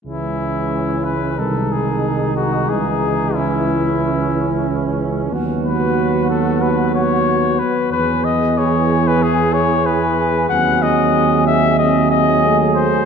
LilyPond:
<<
  \new Staff \with { instrumentName = "Cornet" } { \time 4/4 \key cis \minor \tempo 4 = 92 e'4. b'8 a'8 gis'4 fis'8 | gis'4 e'2~ e'8 r8 | r8 b'4 a'8 b'8 cis''4 b'8 | b'8 dis''8 cis''8. b'16 gis'8 cis''8 b'4 |
fis''8 dis''4 e''8 dis''8 dis''4 bis'8 | }
  \new Staff \with { instrumentName = "Flugelhorn" } { \time 4/4 \key cis \minor cis'2 dis'2~ | dis'4 cis'2. | fis'2.~ fis'8 r8 | gis'1 |
gis'2 gis'2 | }
  \new Staff \with { instrumentName = "French horn" } { \time 4/4 \key cis \minor gis1~ | gis1 | b1~ | b1 |
bis2 bis4 a4 | }
  \new Staff \with { instrumentName = "Trombone" } { \clef bass \time 4/4 \key cis \minor e2 dis2 | e1 | fis1~ | fis8 r8 e2. |
fis2 fis2 | }
  \new Staff \with { instrumentName = "Tuba" } { \clef bass \time 4/4 \key cis \minor cis,2 bis,,2 | cis,1 | dis,2.~ dis,8 r8 | e,1 |
dis,1 | }
>>